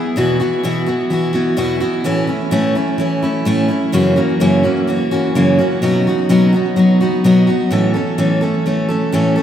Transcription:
0.00 0.16 E3 soft
0.00 0.17 B3 soft
0.00 0.16 E4 medium
0.00 0.16 G#4 medium
0.16 0.40 E2 medium
0.16 0.40 B2 medium
0.16 0.40 E3 medium
0.16 0.40 B3 medium
0.16 0.40 E4 medium
0.16 0.38 F#4 medium
0.40 0.63 E3 soft
0.40 0.64 B3 soft
0.40 0.64 E4 soft
0.40 0.63 F#4 medium
0.63 0.87 E2 medium
0.63 0.87 B2 medium
0.63 0.88 E3 medium
0.63 0.87 B3 medium
0.63 0.86 E4 medium
0.63 0.85 F#4 medium
0.86 1.09 E3 soft
0.86 1.10 B3 soft
0.86 1.10 E4 soft
0.86 1.10 F#4 medium
1.10 1.34 E3 medium
1.10 1.34 B3 medium
1.10 1.33 E4 medium
1.10 1.32 F#4 medium
1.33 1.56 E3 soft
1.33 1.57 B3 soft
1.33 1.57 E4 medium
1.33 1.57 F#4 medium
1.57 1.81 E2 medium
1.57 1.81 B2 medium
1.57 1.81 E3 medium
1.57 1.81 B3 medium
1.57 1.80 E4 medium
1.57 1.79 F#4 medium
1.80 2.03 E3 soft
1.80 2.05 B3 soft
1.80 2.05 E4 medium
1.80 2.05 F#4 medium
2.04 2.28 A2 medium
2.04 2.28 E3 medium
2.04 2.28 A3 medium
2.04 2.28 C#4 medium
2.04 2.26 E4 medium
2.27 2.51 A3 soft
2.27 2.51 C#4 soft
2.27 2.52 E4 medium
2.51 2.75 A2 medium
2.51 2.75 E3 medium
2.51 2.76 A3 medium
2.51 2.75 C#4 medium
2.51 2.74 E4 medium
2.75 2.98 A3 soft
2.75 2.99 C#4 medium
2.75 2.99 E4 medium
2.98 3.22 E3 medium
2.98 3.23 A3 medium
2.98 3.22 C#4 medium
2.98 3.21 E4 medium
3.22 3.45 A3 soft
3.22 3.45 C#4 medium
3.22 3.46 E4 medium
3.45 3.70 A2 medium
3.45 3.70 E3 medium
3.45 3.70 A3 medium
3.45 3.68 C#4 medium
3.45 3.67 E4 loud
3.68 3.93 A3 soft
3.68 3.93 C#4 soft
3.68 3.93 E4 medium
3.92 4.17 F#2 medium
3.92 4.17 C#3 medium
3.92 4.17 E3 medium
3.92 4.16 A#3 medium
3.92 4.16 C#4 medium
3.92 4.15 F#4 medium
4.16 4.40 E3 soft
4.16 4.40 A#3 medium
4.16 4.40 C#4 medium
4.16 4.40 F#4 medium
4.40 4.64 F#2 medium
4.40 4.65 C#3 medium
4.40 4.65 E3 medium
4.40 4.64 A#3 medium
4.40 4.63 C#4 medium
4.40 4.62 F#4 medium
4.63 4.86 E3 soft
4.63 4.87 A#3 soft
4.63 4.88 C#4 medium
4.63 4.88 F#4 medium
4.87 5.12 E3 medium
4.87 5.12 A#3 medium
4.87 5.11 C#4 medium
4.87 5.10 F#4 medium
5.11 5.35 E3 medium
5.11 5.35 A#3 soft
5.11 5.35 C#4 medium
5.11 5.35 F#4 medium
5.35 5.59 F#2 medium
5.35 5.59 C#3 medium
5.35 5.59 E3 medium
5.35 5.59 A#3 medium
5.35 5.58 C#4 medium
5.35 5.57 F#4 medium
5.59 5.82 E3 soft
5.59 5.82 A#3 soft
5.59 5.83 C#4 soft
5.59 5.83 F#4 medium
5.82 6.06 B2 medium
5.82 6.06 F#3 medium
5.82 6.06 B3 medium
5.82 6.07 D#4 medium
5.82 6.06 F#4 medium
6.07 6.29 B3 soft
6.07 6.29 D#4 soft
6.07 6.30 F#4 medium
6.29 6.53 B2 medium
6.29 6.53 F#3 medium
6.29 6.54 B3 medium
6.29 6.53 D#4 medium
6.29 6.51 F#4 medium
6.53 6.76 B3 soft
6.53 6.77 D#4 medium
6.53 6.77 F#4 medium
6.76 7.00 F#3 medium
6.76 7.01 B3 medium
6.76 7.01 D#4 medium
6.76 6.99 F#4 medium
7.01 7.24 B3 soft
7.01 7.25 D#4 medium
7.01 7.24 F#4 medium
7.24 7.48 B2 medium
7.24 7.48 F#3 medium
7.24 7.49 B3 medium
7.24 7.47 D#4 medium
7.24 7.46 F#4 medium
7.47 7.71 B3 soft
7.47 7.71 D#4 soft
7.47 7.71 F#4 soft
7.71 7.95 A2 medium
7.71 7.95 E3 medium
7.71 7.95 A3 medium
7.71 7.94 C#4 medium
7.71 7.93 A4 medium
7.94 8.17 A3 soft
7.94 8.18 C#4 soft
7.94 8.18 A4 medium
8.18 8.42 A2 medium
8.18 8.42 E3 medium
8.18 8.42 A3 medium
8.18 8.41 C#4 medium
8.18 8.40 A4 medium
8.41 8.65 A3 soft
8.41 8.66 C#4 soft
8.41 8.65 A4 medium
8.66 8.90 E3 medium
8.66 8.90 A3 medium
8.66 8.89 C#4 medium
8.66 8.87 A4 medium
8.89 9.13 A3 soft
8.89 9.13 C#4 medium
8.89 9.13 A4 medium
9.12 9.37 A2 medium
9.12 9.37 E3 medium
9.12 9.37 A3 medium
9.12 9.36 C#4 medium
9.12 9.34 A4 medium
9.36 9.43 A3 soft
9.36 9.43 C#4 medium
9.36 9.43 A4 medium

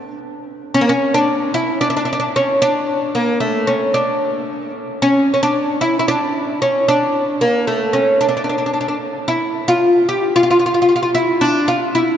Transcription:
0.00 0.18 D4 medium
0.74 0.82 C#4 medium
0.81 0.89 A#3 medium
0.89 1.14 C#4 medium
1.14 1.54 D4 medium
1.54 1.81 E4 medium
1.81 1.89 D4 medium
1.90 1.95 D4 medium
1.97 2.04 D4 medium
2.05 2.11 D4 medium
2.13 2.18 D4 medium
2.20 2.27 D4 medium
2.36 2.61 C#4 medium
2.62 3.17 D4 loud
3.15 3.40 A#3 medium
3.40 3.69 A3 medium
3.67 3.94 C#4 medium
3.94 4.71 D4 medium
5.02 5.32 C#4 loud
5.34 5.41 C#4 medium
5.43 5.81 D4 medium
5.81 5.98 E4 medium
5.99 6.07 E4 medium
6.08 6.61 D4 loud
6.62 6.88 C#4 medium
6.88 7.43 D4 medium
7.41 7.67 A#3 medium
7.67 7.95 A3 medium
7.93 8.20 C#4 medium
8.21 8.27 D4 medium
8.29 8.36 D4 medium
8.37 8.43 D4 medium
8.44 8.48 D4 soft
8.49 8.57 D4 medium
8.58 8.65 D4 soft
8.66 8.72 D4 soft
8.74 8.79 D4 soft
8.81 8.87 D4 soft
8.88 8.96 D4 soft
9.28 9.68 E4 medium
9.68 10.08 F4 medium
10.09 10.35 G4 medium
10.36 10.42 F4 medium
10.43 10.49 F4 medium
10.51 10.58 F4 medium
10.59 10.65 F4 medium
10.66 10.73 F4 medium
10.74 10.81 F4 medium
10.82 10.87 F4 medium
10.89 10.94 F4 medium
10.96 11.01 F4 medium
11.03 11.10 F4 medium
11.15 11.42 E4 medium
11.41 11.68 D4 medium
11.68 11.92 F4 medium
11.95 12.17 E4 medium

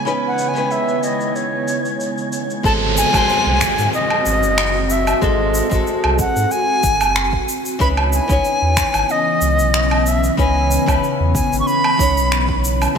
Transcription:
0.00 2.60 C#3 medium
0.00 2.60 G#3 medium
0.00 2.60 B3 medium
0.00 2.60 C#5 medium
0.00 2.65 G#5 medium
0.00 2.65 G#6 medium
0.05 0.51 E3 medium
0.05 0.51 C#4 medium
0.05 0.52 D#4 medium
0.05 0.52 B4 loud
0.05 0.12 G#5 loud
0.05 shaker soft
0.27 0.50 F#5 medium
0.38 shaker medium
0.48 0.73 G#5 medium
0.53 2.61 D#3 medium
0.53 2.59 E3 medium
0.53 2.60 C#4 medium
0.53 shaker soft
0.58 2.62 B4 medium
0.71 1.05 E5 medium
0.71 shaker soft
0.88 shaker soft
1.03 1.37 D#5 medium
1.03 shaker medium
1.21 shaker soft
1.36 2.32 C#5 medium
1.36 shaker soft
1.68 shaker medium
1.85 shaker soft
2.00 shaker soft
2.18 shaker soft
2.33 shaker medium
2.50 shaker soft
2.63 3.04 G#1 medium
2.63 3.09 G#3 loud
2.63 7.44 C4 medium
2.63 3.09 C4 medium
2.63 7.44 F#4 medium
2.63 3.10 F#4 medium
2.63 3.10 A4 loud
2.63 2.73 A5 loud
2.63 kick loud
2.63 downlifter medium
2.63 shaker soft
2.97 3.90 G#5 loud
2.97 shaker medium
3.12 3.24 G#1 loud
3.12 5.18 G#3 medium
3.12 5.19 C4 medium
3.12 5.19 F#4 medium
3.12 kick loud
3.12 low woodblock medium
3.12 shaker soft
3.17 5.20 C5 loud
3.29 shaker soft
3.46 3.66 C2 loud
3.61 finger snap medium
3.61 kick medium
3.61 shaker medium
3.78 3.88 G#2 medium
3.78 shaker soft
3.94 4.93 D#5 loud
3.94 shaker soft
4.10 low woodblock medium
4.26 4.44 G#1 medium
4.26 shaker medium
4.43 5.14 F#1 loud
4.43 shaker soft
4.58 finger snap medium
4.58 shaker soft
4.90 5.24 E5 medium
4.90 shaker medium
5.07 low woodblock medium
5.07 shaker soft
5.21 5.62 G#1 medium
5.21 5.67 G#3 loud
5.21 5.67 C4 loud
5.21 5.68 F#4 medium
5.21 5.68 A4 loud
5.21 5.87 D#5 medium
5.21 kick loud
5.21 shaker soft
5.54 shaker medium
5.69 5.82 G#1 loud
5.69 7.45 G#3 medium
5.69 7.46 C4 medium
5.69 7.47 F#4 medium
5.69 kick loud
5.69 shaker soft
5.74 7.47 A4 loud
5.87 shaker soft
6.04 6.24 C2 medium
6.04 low woodblock medium
6.19 6.53 F#5 medium
6.19 kick loud
6.19 shaker medium
6.36 6.46 G#2 medium
6.36 shaker soft
6.51 7.48 G#5 loud
6.51 shaker soft
6.83 7.02 G#1 loud
6.83 kick loud
6.83 shaker medium
7.01 7.40 F#1 loud
7.01 low woodblock medium
7.01 shaker soft
7.16 finger snap medium
7.16 shaker soft
7.33 kick medium
7.48 12.92 C#3 medium
7.48 12.93 E3 medium
7.48 12.92 B3 medium
7.48 12.93 C#4 medium
7.48 shaker medium
7.65 shaker soft
7.79 8.20 C#2 medium
7.79 8.25 E3 loud
7.79 8.25 C#4 medium
7.79 8.26 D#4 medium
7.79 8.26 B4 loud
7.79 7.88 B5 loud
7.79 kick loud
7.79 shaker soft
7.97 low woodblock medium
8.13 9.13 G#5 loud
8.13 shaker medium
8.28 8.39 C#2 loud
8.28 10.34 E3 loud
8.28 10.34 C#4 medium
8.28 10.35 D#4 medium
8.28 kick loud
8.28 shaker medium
8.32 10.36 C#5 loud
8.45 shaker soft
8.62 8.82 E2 loud
8.77 finger snap medium
8.77 kick loud
8.77 shaker medium
8.94 9.04 G#1 medium
8.94 low woodblock medium
8.94 shaker soft
9.09 10.10 D#5 loud
9.09 shaker soft
9.41 9.60 C#2 loud
9.41 shaker medium
9.59 10.30 B1 medium
9.59 shaker soft
9.74 finger snap medium
9.74 shaker soft
9.91 low woodblock medium
10.06 10.38 E5 medium
10.06 shaker medium
10.24 shaker soft
10.37 10.78 C#2 medium
10.37 10.83 E3 loud
10.37 10.83 C#4 loud
10.37 10.84 D#4 medium
10.37 10.84 B4 loud
10.37 10.99 G#5 loud
10.37 kick loud
10.37 shaker soft
10.71 shaker medium
10.86 10.98 C#2 loud
10.86 11.96 E3 medium
10.86 11.96 C#4 medium
10.86 11.97 D#4 medium
10.86 kick loud
10.86 low woodblock medium
10.86 shaker soft
10.91 11.98 B4 loud
11.04 shaker soft
11.20 11.40 E2 loud
11.34 11.58 G#5 loud
11.34 kick loud
11.34 shaker medium
11.53 11.62 G#1 medium
11.53 shaker soft
11.60 11.68 C#6 medium
11.67 12.64 B5 loud
11.67 shaker soft
11.84 low woodblock medium
11.98 12.18 C#2 loud
11.98 12.92 E3 loud
11.98 12.92 C#4 medium
11.98 12.93 D#4 medium
11.98 kick loud
11.98 shaker medium
12.02 12.94 C#5 loud
12.16 12.88 B1 loud
12.16 shaker soft
12.32 finger snap medium
12.32 shaker soft
12.49 kick medium
12.65 shaker medium
12.82 low woodblock medium
12.82 shaker soft
12.95 12.98 G#3 loud

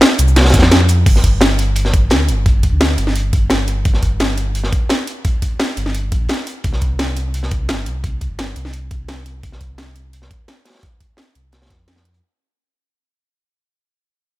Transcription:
0.01 snare loud
0.01 closed hi-hat medium
0.18 0.55 C2 loud
0.18 closed hi-hat medium
0.18 closed hi-hat loud
0.18 shaker medium
0.28 shaker soft
0.36 snare medium
0.36 closed hi-hat medium
0.41 snare medium
0.41 closed hi-hat medium
0.45 snare medium
0.45 closed hi-hat medium
0.49 snare medium
0.49 closed hi-hat medium
0.54 1.05 F2 loud
0.54 kick loud
0.54 snare medium
0.54 closed hi-hat loud
0.54 closed hi-hat medium
0.54 shaker medium
0.58 snare medium
0.58 closed hi-hat medium
0.62 snare loud
0.62 snare medium
0.62 closed hi-hat medium
0.71 snare loud
0.71 closed hi-hat medium
0.80 snare soft
0.89 closed hi-hat medium
0.89 open hi-hat medium
0.89 shaker medium
1.06 2.12 G1 loud
1.06 kick loud
1.06 closed hi-hat medium
1.06 crash medium
1.16 snare soft
1.24 kick medium
1.24 closed hi-hat medium
1.41 snare loud
1.41 closed hi-hat medium
1.59 closed hi-hat loud
1.59 closed hi-hat medium
1.76 closed hi-hat medium
1.85 snare soft
1.93 kick loud
1.93 closed hi-hat medium
2.10 2.30 D2 medium
2.10 snare loud
2.10 closed hi-hat medium
2.29 2.71 G1 loud
2.29 closed hi-hat medium
2.29 closed hi-hat loud
2.46 kick loud
2.46 closed hi-hat medium
2.63 kick medium
2.63 closed hi-hat medium
2.72 2.97 D2 medium
2.81 snare loud
2.81 closed hi-hat medium
2.98 3.84 G1 loud
2.98 closed hi-hat medium
3.07 snare soft
3.16 closed hi-hat medium
3.33 kick loud
3.33 closed hi-hat medium
3.50 snare loud
3.50 closed hi-hat medium
3.68 closed hi-hat medium
3.85 4.71 G1 loud
3.85 kick loud
3.85 closed hi-hat medium
3.94 snare soft
4.03 kick medium
4.03 closed hi-hat medium
4.20 snare loud
4.20 closed hi-hat medium
4.37 closed hi-hat medium
4.55 closed hi-hat medium
4.64 snare medium
4.73 kick loud
4.73 closed hi-hat medium
4.89 snare loud
4.89 closed hi-hat medium
5.07 closed hi-hat medium
5.25 kick loud
5.25 closed hi-hat medium
5.42 kick medium
5.42 closed hi-hat medium
5.59 snare loud
5.59 closed hi-hat medium
5.77 6.14 G1 loud
5.77 closed hi-hat medium
5.86 snare soft
5.94 closed hi-hat medium
6.12 6.28 A#1 medium
6.12 kick loud
6.12 closed hi-hat medium
6.29 snare loud
6.29 closed hi-hat medium
6.47 closed hi-hat medium
6.64 7.71 C2 loud
6.64 kick loud
6.64 closed hi-hat medium
6.73 snare soft
6.81 kick medium
6.81 closed hi-hat medium
6.99 snare loud
6.99 closed hi-hat medium
7.17 closed hi-hat medium
7.34 closed hi-hat medium
7.43 snare soft
7.51 kick loud
7.51 closed hi-hat medium
7.69 7.88 G1 medium
7.69 snare loud
7.69 closed hi-hat medium
7.86 8.29 C2 medium
7.86 closed hi-hat medium
8.04 kick loud
8.04 closed hi-hat medium
8.21 kick medium
8.21 closed hi-hat medium
8.30 8.55 G1 medium
8.39 snare loud
8.39 closed hi-hat medium
8.56 9.42 C2 loud
8.56 closed hi-hat medium
8.65 snare soft
8.73 closed hi-hat medium
8.91 kick loud
8.91 closed hi-hat medium
9.08 snare loud
9.08 closed hi-hat medium
9.26 closed hi-hat medium
9.43 10.29 C2 loud
9.43 kick loud
9.43 closed hi-hat medium
9.52 snare soft
9.61 kick medium
9.61 closed hi-hat medium
9.78 snare loud
9.78 closed hi-hat medium
9.95 closed hi-hat medium
10.13 closed hi-hat medium
10.22 snare medium
10.30 kick medium
10.30 closed hi-hat medium
10.48 snare loud
10.48 closed hi-hat medium
10.65 snare medium
10.65 closed hi-hat medium
10.70 snare medium
10.70 closed hi-hat medium
10.74 snare medium
10.74 closed hi-hat medium
10.79 snare medium
10.79 closed hi-hat medium
10.83 kick loud
10.83 closed hi-hat medium
11.01 kick medium
11.01 closed hi-hat medium
11.17 snare loud
11.17 closed hi-hat medium
11.35 11.72 C2 loud
11.35 closed hi-hat medium
11.52 snare medium
11.52 closed hi-hat medium
11.62 snare medium
11.62 closed hi-hat medium
11.66 snare medium
11.66 closed hi-hat medium
11.70 12.21 F2 medium
11.70 kick medium
11.70 snare medium
11.70 closed hi-hat medium
11.88 snare loud
11.88 closed hi-hat medium
11.96 snare medium
11.96 closed hi-hat medium
12.05 closed hi-hat medium
12.14 closed hi-hat medium

